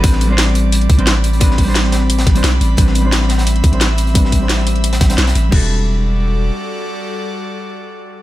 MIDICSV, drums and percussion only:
0, 0, Header, 1, 2, 480
1, 0, Start_track
1, 0, Key_signature, 1, "minor"
1, 0, Tempo, 342857
1, 53, Time_signature, 4, 2, 24, 8
1, 11514, End_track
2, 0, Start_track
2, 0, Title_t, "Drums"
2, 52, Note_on_c, 9, 36, 117
2, 53, Note_on_c, 9, 42, 87
2, 54, Note_off_c, 9, 42, 0
2, 54, Note_on_c, 9, 42, 94
2, 173, Note_on_c, 9, 38, 47
2, 192, Note_off_c, 9, 36, 0
2, 194, Note_off_c, 9, 42, 0
2, 293, Note_on_c, 9, 42, 62
2, 295, Note_off_c, 9, 42, 0
2, 295, Note_on_c, 9, 42, 63
2, 313, Note_off_c, 9, 38, 0
2, 435, Note_off_c, 9, 42, 0
2, 532, Note_on_c, 9, 38, 118
2, 533, Note_off_c, 9, 38, 0
2, 533, Note_on_c, 9, 38, 115
2, 533, Note_on_c, 9, 42, 86
2, 536, Note_off_c, 9, 42, 0
2, 536, Note_on_c, 9, 42, 87
2, 659, Note_off_c, 9, 38, 0
2, 659, Note_on_c, 9, 38, 48
2, 676, Note_off_c, 9, 42, 0
2, 773, Note_on_c, 9, 42, 63
2, 777, Note_off_c, 9, 42, 0
2, 777, Note_on_c, 9, 42, 61
2, 799, Note_off_c, 9, 38, 0
2, 917, Note_off_c, 9, 42, 0
2, 1014, Note_on_c, 9, 42, 87
2, 1020, Note_off_c, 9, 42, 0
2, 1020, Note_on_c, 9, 42, 90
2, 1140, Note_off_c, 9, 42, 0
2, 1140, Note_on_c, 9, 42, 35
2, 1254, Note_off_c, 9, 42, 0
2, 1254, Note_on_c, 9, 36, 103
2, 1254, Note_on_c, 9, 42, 62
2, 1380, Note_off_c, 9, 42, 0
2, 1380, Note_on_c, 9, 42, 35
2, 1394, Note_off_c, 9, 36, 0
2, 1495, Note_off_c, 9, 42, 0
2, 1495, Note_on_c, 9, 42, 82
2, 1496, Note_off_c, 9, 42, 0
2, 1496, Note_on_c, 9, 38, 115
2, 1496, Note_on_c, 9, 42, 88
2, 1498, Note_off_c, 9, 38, 0
2, 1498, Note_on_c, 9, 38, 111
2, 1636, Note_off_c, 9, 42, 0
2, 1638, Note_off_c, 9, 38, 0
2, 1735, Note_on_c, 9, 42, 61
2, 1867, Note_off_c, 9, 42, 0
2, 1867, Note_on_c, 9, 42, 45
2, 1967, Note_off_c, 9, 42, 0
2, 1967, Note_on_c, 9, 42, 95
2, 1974, Note_off_c, 9, 42, 0
2, 1974, Note_on_c, 9, 36, 112
2, 1974, Note_on_c, 9, 42, 89
2, 2111, Note_on_c, 9, 38, 49
2, 2114, Note_off_c, 9, 36, 0
2, 2114, Note_off_c, 9, 42, 0
2, 2213, Note_on_c, 9, 46, 80
2, 2214, Note_on_c, 9, 36, 56
2, 2216, Note_on_c, 9, 42, 63
2, 2251, Note_off_c, 9, 38, 0
2, 2353, Note_off_c, 9, 46, 0
2, 2354, Note_off_c, 9, 36, 0
2, 2356, Note_off_c, 9, 42, 0
2, 2451, Note_on_c, 9, 38, 125
2, 2457, Note_off_c, 9, 38, 0
2, 2457, Note_on_c, 9, 38, 109
2, 2457, Note_on_c, 9, 42, 89
2, 2460, Note_off_c, 9, 42, 0
2, 2460, Note_on_c, 9, 42, 89
2, 2576, Note_off_c, 9, 38, 0
2, 2576, Note_on_c, 9, 38, 57
2, 2600, Note_off_c, 9, 42, 0
2, 2692, Note_off_c, 9, 38, 0
2, 2692, Note_on_c, 9, 38, 104
2, 2693, Note_on_c, 9, 42, 85
2, 2695, Note_off_c, 9, 42, 0
2, 2695, Note_on_c, 9, 42, 65
2, 2832, Note_off_c, 9, 38, 0
2, 2835, Note_off_c, 9, 42, 0
2, 2936, Note_on_c, 9, 42, 89
2, 2945, Note_off_c, 9, 42, 0
2, 2945, Note_on_c, 9, 42, 58
2, 3059, Note_off_c, 9, 42, 0
2, 3059, Note_on_c, 9, 42, 36
2, 3061, Note_on_c, 9, 38, 106
2, 3068, Note_off_c, 9, 42, 0
2, 3068, Note_on_c, 9, 42, 70
2, 3173, Note_on_c, 9, 36, 97
2, 3175, Note_off_c, 9, 42, 0
2, 3175, Note_on_c, 9, 42, 62
2, 3179, Note_off_c, 9, 38, 0
2, 3179, Note_on_c, 9, 38, 48
2, 3296, Note_off_c, 9, 42, 0
2, 3296, Note_on_c, 9, 42, 57
2, 3299, Note_off_c, 9, 42, 0
2, 3299, Note_on_c, 9, 42, 36
2, 3313, Note_off_c, 9, 36, 0
2, 3319, Note_off_c, 9, 38, 0
2, 3415, Note_off_c, 9, 42, 0
2, 3415, Note_on_c, 9, 38, 114
2, 3415, Note_on_c, 9, 42, 91
2, 3416, Note_off_c, 9, 42, 0
2, 3416, Note_on_c, 9, 42, 88
2, 3421, Note_off_c, 9, 38, 0
2, 3421, Note_on_c, 9, 38, 112
2, 3556, Note_off_c, 9, 42, 0
2, 3561, Note_off_c, 9, 38, 0
2, 3655, Note_on_c, 9, 42, 64
2, 3795, Note_off_c, 9, 42, 0
2, 3880, Note_on_c, 9, 42, 81
2, 3893, Note_on_c, 9, 36, 110
2, 3895, Note_off_c, 9, 42, 0
2, 3895, Note_on_c, 9, 42, 91
2, 4014, Note_on_c, 9, 38, 47
2, 4033, Note_off_c, 9, 36, 0
2, 4035, Note_off_c, 9, 42, 0
2, 4131, Note_on_c, 9, 42, 69
2, 4136, Note_off_c, 9, 42, 0
2, 4136, Note_on_c, 9, 42, 65
2, 4154, Note_off_c, 9, 38, 0
2, 4276, Note_off_c, 9, 42, 0
2, 4370, Note_on_c, 9, 38, 121
2, 4375, Note_off_c, 9, 38, 0
2, 4375, Note_on_c, 9, 38, 108
2, 4375, Note_on_c, 9, 42, 92
2, 4377, Note_off_c, 9, 42, 0
2, 4377, Note_on_c, 9, 42, 79
2, 4502, Note_off_c, 9, 38, 0
2, 4502, Note_on_c, 9, 38, 46
2, 4517, Note_off_c, 9, 42, 0
2, 4608, Note_off_c, 9, 38, 0
2, 4608, Note_on_c, 9, 38, 100
2, 4616, Note_on_c, 9, 42, 66
2, 4621, Note_off_c, 9, 42, 0
2, 4621, Note_on_c, 9, 42, 72
2, 4738, Note_off_c, 9, 38, 0
2, 4738, Note_on_c, 9, 38, 105
2, 4744, Note_off_c, 9, 42, 0
2, 4744, Note_on_c, 9, 42, 74
2, 4854, Note_off_c, 9, 42, 0
2, 4854, Note_on_c, 9, 42, 93
2, 4857, Note_off_c, 9, 42, 0
2, 4857, Note_on_c, 9, 42, 82
2, 4878, Note_off_c, 9, 38, 0
2, 4979, Note_off_c, 9, 42, 0
2, 4979, Note_on_c, 9, 42, 36
2, 5092, Note_on_c, 9, 36, 94
2, 5095, Note_off_c, 9, 42, 0
2, 5095, Note_on_c, 9, 42, 61
2, 5219, Note_off_c, 9, 42, 0
2, 5219, Note_on_c, 9, 42, 37
2, 5232, Note_off_c, 9, 36, 0
2, 5327, Note_on_c, 9, 38, 121
2, 5330, Note_off_c, 9, 42, 0
2, 5330, Note_on_c, 9, 42, 90
2, 5334, Note_off_c, 9, 38, 0
2, 5334, Note_off_c, 9, 42, 0
2, 5334, Note_on_c, 9, 38, 111
2, 5334, Note_on_c, 9, 42, 93
2, 5474, Note_off_c, 9, 38, 0
2, 5474, Note_off_c, 9, 42, 0
2, 5568, Note_on_c, 9, 42, 66
2, 5574, Note_off_c, 9, 42, 0
2, 5574, Note_on_c, 9, 42, 65
2, 5698, Note_off_c, 9, 42, 0
2, 5698, Note_on_c, 9, 42, 38
2, 5812, Note_on_c, 9, 36, 109
2, 5813, Note_off_c, 9, 42, 0
2, 5813, Note_on_c, 9, 42, 94
2, 5815, Note_off_c, 9, 42, 0
2, 5815, Note_on_c, 9, 42, 86
2, 5949, Note_on_c, 9, 38, 48
2, 5952, Note_off_c, 9, 36, 0
2, 5955, Note_off_c, 9, 42, 0
2, 6052, Note_on_c, 9, 42, 66
2, 6053, Note_on_c, 9, 36, 53
2, 6055, Note_off_c, 9, 42, 0
2, 6055, Note_on_c, 9, 42, 61
2, 6089, Note_off_c, 9, 38, 0
2, 6193, Note_off_c, 9, 36, 0
2, 6195, Note_off_c, 9, 42, 0
2, 6291, Note_on_c, 9, 42, 81
2, 6292, Note_off_c, 9, 42, 0
2, 6292, Note_on_c, 9, 38, 108
2, 6292, Note_on_c, 9, 42, 92
2, 6411, Note_off_c, 9, 38, 0
2, 6411, Note_on_c, 9, 38, 59
2, 6432, Note_off_c, 9, 42, 0
2, 6534, Note_on_c, 9, 42, 71
2, 6551, Note_off_c, 9, 38, 0
2, 6658, Note_off_c, 9, 42, 0
2, 6658, Note_on_c, 9, 42, 36
2, 6773, Note_off_c, 9, 42, 0
2, 6773, Note_on_c, 9, 42, 57
2, 6774, Note_off_c, 9, 42, 0
2, 6774, Note_on_c, 9, 42, 92
2, 6897, Note_off_c, 9, 42, 0
2, 6897, Note_on_c, 9, 42, 37
2, 6899, Note_on_c, 9, 38, 101
2, 6902, Note_off_c, 9, 42, 0
2, 6902, Note_on_c, 9, 42, 79
2, 7011, Note_off_c, 9, 38, 0
2, 7011, Note_on_c, 9, 38, 102
2, 7013, Note_off_c, 9, 42, 0
2, 7013, Note_on_c, 9, 36, 97
2, 7013, Note_on_c, 9, 42, 79
2, 7014, Note_off_c, 9, 42, 0
2, 7014, Note_on_c, 9, 42, 66
2, 7138, Note_off_c, 9, 42, 0
2, 7138, Note_on_c, 9, 42, 37
2, 7139, Note_off_c, 9, 42, 0
2, 7139, Note_on_c, 9, 42, 66
2, 7142, Note_off_c, 9, 38, 0
2, 7142, Note_on_c, 9, 38, 98
2, 7153, Note_off_c, 9, 36, 0
2, 7247, Note_off_c, 9, 42, 0
2, 7247, Note_on_c, 9, 42, 83
2, 7253, Note_off_c, 9, 38, 0
2, 7253, Note_off_c, 9, 42, 0
2, 7253, Note_on_c, 9, 38, 113
2, 7253, Note_on_c, 9, 42, 95
2, 7260, Note_off_c, 9, 38, 0
2, 7260, Note_on_c, 9, 38, 97
2, 7380, Note_off_c, 9, 42, 0
2, 7380, Note_on_c, 9, 42, 75
2, 7382, Note_off_c, 9, 38, 0
2, 7382, Note_on_c, 9, 38, 102
2, 7492, Note_off_c, 9, 42, 0
2, 7492, Note_on_c, 9, 42, 57
2, 7495, Note_off_c, 9, 42, 0
2, 7495, Note_on_c, 9, 42, 67
2, 7522, Note_off_c, 9, 38, 0
2, 7635, Note_off_c, 9, 42, 0
2, 7732, Note_on_c, 9, 36, 108
2, 7734, Note_on_c, 9, 49, 80
2, 7872, Note_off_c, 9, 36, 0
2, 7874, Note_off_c, 9, 49, 0
2, 11514, End_track
0, 0, End_of_file